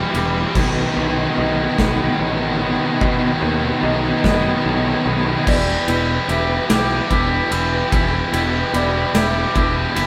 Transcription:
Already playing: clean electric guitar E2 E3 G3 E4, analog synth pad G3 E4 A4 G5, felt piano E5
0.01 distorted electric guitar E3 G3
0.10 distorted electric guitar E3 G3
0.14 picked electric bass E1, distorted electric guitar E3 G3, clean electric guitar G3, felt piano B4, ride
0.26 distorted electric guitar E3 G3
0.32 distorted electric guitar E3 G3
0.40 distorted electric guitar E3 G3
0.48 distorted electric guitar E3 G3
0.55 picked electric bass B1, distorted electric guitar B2 D#3, clean electric guitar B2, analog synth pad B3 B4 D#5 F#5, felt piano B4, kick, crash
0.62 distorted electric guitar B2 D#3
0.70 distorted electric guitar B2 D#3
0.77 distorted electric guitar B2 D#3
0.86 distorted electric guitar B2 D#3
0.93 picked electric bass B1, distorted electric guitar B2 D#3
1.02 distorted electric guitar B2 D#3
1.08 distorted electric guitar B2 D#3
1.15 distorted electric guitar B2 D#3
1.24 distorted electric guitar B2 D#3
1.32 distorted electric guitar B2 D#3
1.38 picked electric bass B1, distorted electric guitar B2 D#3, clean electric guitar D#4, felt piano D#5
1.47 distorted electric guitar B2 D#3
1.53 distorted electric guitar B2 D#3
1.62 distorted electric guitar B2 D#3
1.70 distorted electric guitar B2 D#3
1.78 picked electric bass B1, distorted electric guitar B2 D#3, clean electric guitar B3, kick, snare
1.85 distorted electric guitar B2 D#3
1.93 distorted electric guitar B2 D#3
2.01 distorted electric guitar B2 D#3
2.08 distorted electric guitar B2 D#3
2.15 distorted electric guitar B2 D#3
2.19 picked electric bass A1, clean electric guitar F#3
2.24 distorted electric guitar B2 D#3
2.31 distorted electric guitar B2 D#3
2.39 distorted electric guitar B2 D#3
2.47 distorted electric guitar B2 D#3
2.55 distorted electric guitar B2 D#3
2.61 distorted electric guitar B2 D#3, clean electric guitar B3, felt piano B4
2.69 distorted electric guitar B2 D#3
2.76 distorted electric guitar B2 D#3
2.84 distorted electric guitar B2 D#3
2.92 distorted electric guitar B2 D#3
3.01 distorted electric guitar B2 D#3, picked electric bass B2, clean electric guitar B2, kick
3.09 distorted electric guitar B2 D#3
3.16 distorted electric guitar B2 D#3
3.25 distorted electric guitar B2 D#3
3.31 distorted electric guitar B2 D#3
3.39 picked electric bass D#2, distorted electric guitar B2 D#3
3.47 distorted electric guitar B2 D#3
3.55 distorted electric guitar B2 D#3
3.63 distorted electric guitar B2 D#3
3.70 distorted electric guitar B2 D#3
3.77 distorted electric guitar B2 D#3
3.83 picked electric bass B1, distorted electric guitar B2 D#3, clean electric guitar D#4, felt piano D#5
3.93 distorted electric guitar B2 D#3
4.01 distorted electric guitar B2 D#3
4.09 distorted electric guitar B2 D#3
4.16 distorted electric guitar B2 D#3
4.24 picked electric bass F#2, distorted electric guitar B2 D#3, clean electric guitar B3, felt piano D#5, kick, snare
4.32 distorted electric guitar B2 D#3
4.39 distorted electric guitar B2 D#3
4.47 distorted electric guitar B2 D#3
4.54 distorted electric guitar B2 D#3
4.61 picked electric bass B1, distorted electric guitar B2 D#3
4.65 clean electric guitar F#3
4.70 distorted electric guitar B2 D#3
4.78 distorted electric guitar B2 D#3
4.86 distorted electric guitar B2 D#3
4.93 distorted electric guitar B2 D#3
5.01 distorted electric guitar B2 D#3
5.06 picked electric bass B1, distorted electric guitar B2 D#3, clean electric guitar B3, felt piano B4
5.16 distorted electric guitar B2 D#3
5.22 distorted electric guitar B2 D#3
5.31 distorted electric guitar B2 D#3
5.39 distorted electric guitar B2 D#3
5.45 picked electric bass E1, clean electric guitar E2, distorted electric guitar E3 B3 E4 G4, analog synth pad E4 B4 D5 G5, felt piano D5, kick, crash
5.88 picked electric bass E1, clean electric guitar B2, distorted electric guitar E3 B3 E4 G4, ride
6.28 picked electric bass E1, distorted electric guitar E3 B3 E4 G4, clean electric guitar G3, felt piano E5, ride
6.69 picked electric bass B1, distorted electric guitar E3 B3 E4 G4, clean electric guitar G4, snare, ride
7.10 picked electric bass E1, distorted electric guitar E3 B3 E4 G4, clean electric guitar D4, kick, ride
7.51 picked electric bass E1, distorted electric guitar E3 B3 E4 G4, clean electric guitar E3, felt piano B4, ride
7.91 picked electric bass E1, clean electric guitar E2, distorted electric guitar E3 B3 E4 G4, kick, ride
8.32 picked electric bass E1, clean electric guitar B2, distorted electric guitar E3 B3 E4 G4, ride
8.73 picked electric bass E1, distorted electric guitar E3 B3 E4 G4, clean electric guitar G3, felt piano D5, ride
9.14 picked electric bass E1, distorted electric guitar E3 B3 E4 G4, clean electric guitar G4, felt piano E5, snare, ride
9.55 picked electric bass E1, distorted electric guitar E3 B3 E4 G4, clean electric guitar D4, kick, ride
9.95 picked electric bass F#1, distorted electric guitar E3 B3 E4 G4, clean electric guitar E3, felt piano B4, ride

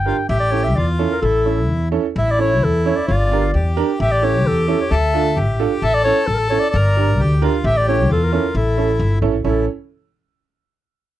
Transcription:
Already playing: upright bass G1, clarinet G5
0.06 upright piano D4 G4 A#4, accordion F4
0.29 upright bass A1, accordion G4, clarinet E5
0.40 clarinet D5
0.51 upright piano C#4 E4 A4, clarinet C#5
0.64 clarinet E5
0.75 upright bass E2, accordion F4, clarinet D5
0.99 upright piano C#4 E4 A4
1.11 clarinet A#4
1.22 upright bass A1, accordion E4, clarinet A4
1.46 upright piano C#4 E4 A4
1.69 upright bass E2
1.92 upright piano C#4 E4 A4
2.16 upright bass A1, accordion E4, clarinet E5
2.31 clarinet D5
2.38 upright piano C#4 E4 A4, clarinet C#5
2.63 upright bass E2, clarinet A4
2.86 upright piano C#4 E4 A4, clarinet C#5
2.96 clarinet D5
3.07 upright bass G1, accordion F4, clarinet D5
3.32 upright piano D4 G4 A#4
3.54 upright bass E2, accordion G4
3.77 upright piano D4 G4 A#4
3.99 upright bass A1, accordion G4, clarinet E5
4.12 clarinet D5
4.22 upright piano C#4 E4 A4, clarinet C#5
4.45 upright bass E2, clarinet A4
4.68 upright piano C#4 E4 A4, clarinet A4
4.81 clarinet C#5
4.91 upright bass D2, accordion A4, clarinet E5
5.14 upright piano D4 F4 A4
5.36 upright bass A1, accordion G4
5.59 upright piano D4 F4 A4
5.82 upright bass A1, accordion A4, clarinet E5
5.94 clarinet D5
6.04 upright piano C#4 E4 A4, clarinet C#5
6.27 upright bass A1, clarinet A4
6.34 clarinet A#4
6.38 clarinet A4
6.50 upright piano C#4 E4 A4, clarinet C#5
6.59 clarinet D5
6.70 upright bass G1, clarinet D5
6.75 accordion A#4
6.97 upright piano D4 G4 A#4
7.19 upright bass D2, accordion G4
7.42 upright piano D4 G4 A#4, accordion F4
7.64 upright bass A1, accordion G4, clarinet E5
7.77 clarinet D5
7.88 upright piano C#4 E4 A4, clarinet C#5
8.09 upright bass E2, accordion F4, clarinet A4
8.24 clarinet A#4
8.32 upright piano C#4 E4 A4, clarinet A#4
8.55 upright bass A1, accordion E4, clarinet A4
8.77 upright piano C#4 E4 A4
8.99 upright bass G1
9.22 upright bass A1, upright piano C#4 E4 A4
9.44 upright bass A1, upright piano C#4 E4 A4, accordion E4, clarinet A4

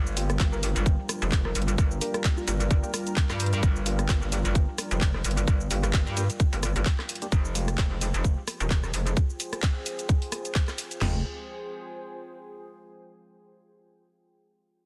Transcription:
Already playing: wobble bass G1, analog synth pad G3 D4 F4 A#4, ambient pad F4 C5 G5
0.07 shaker
0.14 synth stab A#3 D4 F4 G4, ambient pad A#4, open hi-hat, shaker
0.30 ambient pad D5, cross-stick, closed hi-hat, shaker
0.40 wobble bass G1, kick, clap, closed hi-hat, shaker
0.53 soft synth lead A#4, shaker
0.63 synth stab A#3 D4 F4 G4, open hi-hat, shaker
0.76 wobble bass G1, closed hi-hat, shaker
0.86 kick, closed hi-hat, shaker
1.09 cross-stick, open hi-hat, shaker
1.22 wobble bass F1, closed hi-hat, shaker
1.32 kick, clap, closed hi-hat, shaker
1.45 soft synth lead A#4, cross-stick
1.55 wobble bass G1, open hi-hat, shaker
1.62 closed hi-hat
1.68 closed hi-hat, shaker
1.78 wobble bass G1, kick, closed hi-hat, shaker
1.91 shaker
2.01 synth stab A#3 D4 F4 G4, soft synth lead A#4, open hi-hat, shaker
2.14 soft synth lead A#4, cross-stick, closed hi-hat, shaker
2.24 kick, clap, closed hi-hat, shaker
2.37 soft synth lead F4, shaker
2.48 wobble bass G1, synth stab A#3 D4 F4 G4, soft synth lead F4, open hi-hat, shaker
2.60 closed hi-hat, shaker
2.71 kick, closed hi-hat, shaker
2.83 synth stab A#3 D4 F4 G4, shaker
2.94 cross-stick, open hi-hat, shaker
3.07 closed hi-hat, shaker
3.17 kick, clap, closed hi-hat, shaker
3.29 wobble bass G2, cross-stick, clap, shaker
3.40 open hi-hat, shaker
3.46 closed hi-hat
3.53 closed hi-hat, shaker
3.63 wobble bass G1, kick, closed hi-hat, shaker
3.76 shaker
3.86 synth stab A#3 D4 F4 G4, open hi-hat, shaker
3.99 cross-stick, closed hi-hat, shaker
4.09 wobble bass G1, kick, clap, closed hi-hat, shaker
4.22 shaker
4.32 synth stab A#3 D4 F4 G4, open hi-hat, shaker
4.45 wobble bass G1, closed hi-hat, shaker
4.55 kick, closed hi-hat, shaker
4.78 cross-stick, open hi-hat, shaker
4.91 wobble bass F1, closed hi-hat, shaker
5.01 kick, clap, closed hi-hat, shaker
5.14 cross-stick
5.24 wobble bass G1, open hi-hat, shaker
5.31 closed hi-hat
5.37 closed hi-hat, shaker
5.48 wobble bass G1, kick, closed hi-hat, shaker
5.60 shaker
5.71 wobble bass G1, synth stab A#3 D4 F4 G4, open hi-hat, shaker
5.83 cross-stick, closed hi-hat, shaker
5.93 kick, clap, closed hi-hat, shaker
6.07 wobble bass G2, shaker
6.17 synth stab A#3 D4 F4 G4, open hi-hat, shaker
6.30 closed hi-hat, shaker
6.40 kick, closed hi-hat, shaker
6.53 wobble bass G1, synth stab A#3 D4 F4 G4, open hi-hat, shaker
6.63 cross-stick, open hi-hat, shaker
6.76 wobble bass G1, synth stab A#3 D4 F4 G4, closed hi-hat, shaker
6.86 kick, clap, closed hi-hat, shaker
6.99 cross-stick, clap
7.09 open hi-hat, shaker
7.15 closed hi-hat
7.22 synth stab A#3 D4 F4 G4, closed hi-hat, shaker
7.32 wobble bass F1, kick, closed hi-hat, shaker
7.45 shaker
7.53 synth stab G#3 C4 F4 G4, ambient pad G#4, open hi-hat, shaker
7.68 ambient pad C5, cross-stick, closed hi-hat, shaker
7.78 wobble bass F1, kick, clap, closed hi-hat, shaker
8.01 synth stab G#3 C4 F4 G4, open hi-hat, shaker
8.14 wobble bass F1, closed hi-hat, shaker
8.24 kick, closed hi-hat, shaker
8.48 cross-stick, open hi-hat, shaker
8.60 wobble bass D#1, closed hi-hat, shaker
8.70 kick, clap, shaker
8.83 cross-stick, shaker
8.94 wobble bass F1, open hi-hat, shaker
9.07 closed hi-hat, shaker
9.17 kick, closed hi-hat, shaker
9.30 shaker
9.40 open hi-hat, shaker
9.53 cross-stick, closed hi-hat, shaker
9.63 kick, clap, closed hi-hat, shaker
9.86 open hi-hat, shaker
9.99 closed hi-hat, shaker
10.09 kick, closed hi-hat, shaker
10.22 open hi-hat
10.32 cross-stick, open hi-hat, shaker
10.45 closed hi-hat, shaker
10.55 kick, clap, shaker
10.68 cross-stick, clap, shaker
10.78 open hi-hat, shaker
10.91 closed hi-hat, shaker
11.01 wobble bass F1, synth stab G#3 C4 F4 G4, ambient pad F4, snare, floor tom, crash
11.09 ambient pad G#4
11.16 ambient pad C5
11.23 ambient pad G5

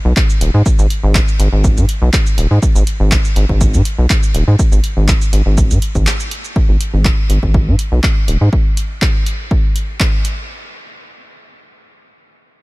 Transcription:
0.05 analog synth bass B1
0.17 kick, clap, shaker
0.30 shaker
0.41 analog synth bass D#1, closed hi-hat
0.54 analog synth bass G#2
0.66 kick, shaker
0.79 analog synth bass G#1, shaker
0.90 closed hi-hat
1.03 analog synth bass G#1
1.15 kick, clap, shaker
1.28 shaker
1.40 analog synth bass G#1, closed hi-hat
1.53 analog synth bass G#1
1.64 kick, shaker
1.77 analog synth bass G#2, shaker
1.89 closed hi-hat
2.02 analog synth bass B1
2.13 kick, clap, shaker
2.26 shaker
2.38 analog synth bass D#1, closed hi-hat
2.51 analog synth bass G#2
2.62 kick, shaker
2.75 analog synth bass G#1, shaker
2.87 closed hi-hat
3.00 analog synth bass G#1
3.12 kick, clap, shaker
3.25 shaker
3.36 analog synth bass G#1, closed hi-hat
3.49 analog synth bass G#1, kick
3.61 kick, shaker
3.74 analog synth bass G#2, shaker
3.85 closed hi-hat
3.99 analog synth bass B1
4.10 kick, clap, shaker
4.23 shaker
4.34 analog synth bass D#1, closed hi-hat
4.48 analog synth bass G#2
4.59 kick, shaker
4.72 analog synth bass G#1, shaker
4.84 closed hi-hat
4.97 analog synth bass G#1
5.08 kick, clap, shaker
5.21 shaker
5.33 analog synth bass G#1, closed hi-hat
5.46 analog synth bass G#1
5.57 kick, shaker
5.71 analog synth bass G#2, shaker
5.82 closed hi-hat
5.95 analog synth bass G#1, kick, shaker
6.07 clap, shaker
6.20 shaker
6.31 closed hi-hat
6.45 shaker
6.56 kick
6.69 analog synth bass G#1
6.81 closed hi-hat
6.94 analog synth bass G#1
7.05 kick, clap
7.30 analog synth bass G#1, closed hi-hat
7.43 analog synth bass G#1, kick
7.54 kick
7.67 analog synth bass G#2
7.79 closed hi-hat
7.92 analog synth bass B1
8.03 kick, clap
8.28 analog synth bass D#1, closed hi-hat
8.41 analog synth bass G#2
8.53 kick
8.77 closed hi-hat
9.02 kick, clap
9.26 closed hi-hat
9.51 kick
9.76 closed hi-hat
10.00 kick, clap
10.25 closed hi-hat

